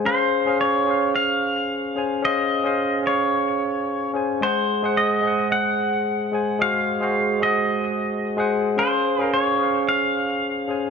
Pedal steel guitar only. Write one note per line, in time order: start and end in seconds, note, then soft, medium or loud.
0.06 0.60 C5 medium
0.61 1.17 C#5 medium
1.16 2.25 F5 loud
2.25 3.02 D#5 loud
3.07 4.11 C#5 medium
4.43 4.99 C5 loud
4.97 5.48 D#5 loud
5.52 6.61 F#5 loud
6.62 7.43 F5 loud
7.43 8.48 D#5 medium
8.79 9.23 C5 loud
9.23 9.33 A#4 loud
9.34 9.84 C#5 medium
9.89 10.90 F5 loud